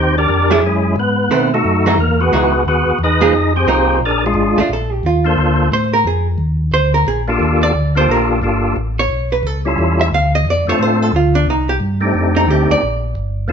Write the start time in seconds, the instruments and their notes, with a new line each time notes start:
Already playing: tonewheel organ D#2 C4 D#4 G4 C5
0.18 tonewheel organ D4 G4 A#4 D5
0.28 tonewheel organ F2
0.51 hollow-body jazz guitar F#3 A3 E4 G#4
0.62 tonewheel organ F#2
0.66 tonewheel organ G#3 C#4 E4 G#4
0.96 tonewheel organ G#2 B3 B4
1.30 tonewheel organ B2, hollow-body jazz guitar D#3 A3 C4
1.54 tonewheel organ A3 D#4 F#4 A4
1.64 tonewheel organ F#2
1.86 hollow-body jazz guitar E3 G#3 D#4 F#4
1.97 tonewheel organ E2 A#4
2.01 tonewheel organ A#3
2.21 tonewheel organ B3 F#4 G#4 B4
2.32 tonewheel organ C#2, hollow-body jazz guitar E3 G#3 D#4 F#4
2.65 tonewheel organ D#2 B3 F#4 G#4 B4
2.86 tonewheel organ D#2
2.99 tonewheel organ E2
3.04 tonewheel organ D#4 G#4 B4 D#5
3.21 hollow-body jazz guitar F3 A#3 D#4 G#4
3.33 tonewheel organ F2
3.56 tonewheel organ C4 G4 G#4 C5
3.67 tonewheel organ C2, hollow-body jazz guitar F3 A#3 D#4
4.00 tonewheel organ A#1
4.05 tonewheel organ D4 G#4 A#4 D5
4.26 tonewheel organ G#3 D4 F4 G#4
4.34 tonewheel organ G#1
4.57 tonewheel organ G#1, hollow-body jazz guitar A3 D4 F4
4.69 tonewheel organ A#1
4.73 hollow-body jazz guitar A4
4.92 hollow-body jazz guitar G4
5.03 tonewheel organ D#2, hollow-body jazz guitar F4
5.24 tonewheel organ A#3 D4 F4 A4 C5
5.37 tonewheel organ D2
5.71 tonewheel organ A2, hollow-body jazz guitar C5
5.93 hollow-body jazz guitar A#4
6.04 tonewheel organ F2, hollow-body jazz guitar G#4
6.38 tonewheel organ D#2
6.72 tonewheel organ D2, hollow-body jazz guitar C5
6.94 hollow-body jazz guitar A#4
7.07 tonewheel organ A#1, hollow-body jazz guitar G#4
7.28 tonewheel organ A#3 D4 F4 G4 A4
7.40 tonewheel organ D#2
7.63 hollow-body jazz guitar D5
7.74 tonewheel organ D2
7.95 tonewheel organ A#3 D4 F4 G4 A4, hollow-body jazz guitar C5
8.08 tonewheel organ A#1, hollow-body jazz guitar A#4
8.42 tonewheel organ G1 A#3 D4 F4 G4 A4
8.76 tonewheel organ A1
8.99 hollow-body jazz guitar C#5
9.09 tonewheel organ B1
9.32 hollow-body jazz guitar B4
9.43 tonewheel organ C#2, hollow-body jazz guitar A4
9.65 tonewheel organ G3 C#4 E4 F4 A4
9.78 tonewheel organ E2
10.01 hollow-body jazz guitar E5
10.12 tonewheel organ D2, hollow-body jazz guitar F5
10.35 hollow-body jazz guitar D#5
10.45 tonewheel organ F2
10.50 hollow-body jazz guitar D5
10.67 tonewheel organ F2 A3 C4 D4 F4 A4, hollow-body jazz guitar C#5
10.79 tonewheel organ A2, hollow-body jazz guitar C5
11.02 hollow-body jazz guitar A4
11.13 tonewheel organ D2, hollow-body jazz guitar F4
11.35 hollow-body jazz guitar D4
11.47 tonewheel organ C2, hollow-body jazz guitar D#4
11.69 hollow-body jazz guitar G4
11.80 tonewheel organ G2
12.00 tonewheel organ A3 C4 D4 D#4 G4
12.14 tonewheel organ F2
12.36 hollow-body jazz guitar D#4
12.46 tonewheel organ D2 A3 C4 D4 D#4 G4, hollow-body jazz guitar G4
12.69 tonewheel organ D2, hollow-body jazz guitar D5
12.82 tonewheel organ A#1
13.15 tonewheel organ G1
13.48 tonewheel organ F1 A#3 C4 D4 F4